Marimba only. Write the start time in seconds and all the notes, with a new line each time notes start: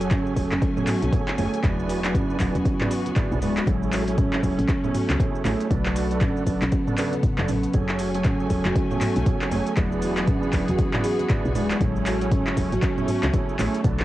0.01 F#3
0.11 C#4
0.36 F#3
0.51 C#4
0.62 C#4
0.77 B3
0.87 F#4
1.38 A3
1.64 F#3
1.89 F#4
2.05 F#3
2.15 C#4
2.40 F#3
2.56 C#4
2.65 C#4
2.81 B3
2.91 F#4
3.42 G#3
3.67 F#3
3.93 F#4
4.08 F#3
4.18 C#4
4.43 F#3
4.59 C#4
4.69 C#4
4.84 B3
4.94 F#4
5.45 A3
5.70 F#3
5.96 F#4
6.11 F#3
6.21 C#4
6.47 F#3
6.62 C#4
6.72 C#4
6.87 B3
6.98 C#3
7.38 F#3
7.49 C#4
7.74 F#3
8.00 F#4
8.15 F#3
8.25 C#4
8.51 F#3
8.66 F#4
8.76 C#4
8.91 B3
9.01 F#4
9.52 A3
9.78 F#3
10.03 F#4
10.18 F#3
10.28 C#4
10.54 F#3
10.69 F#4
10.79 C#4
10.94 B3
11.04 F#4
11.55 G#3
11.81 F#3
12.06 F#4
12.22 F#3
12.32 C#4
12.58 F#3
12.73 F#4
12.83 C#4
12.98 B3
13.08 F#4
13.59 A3
13.84 F#3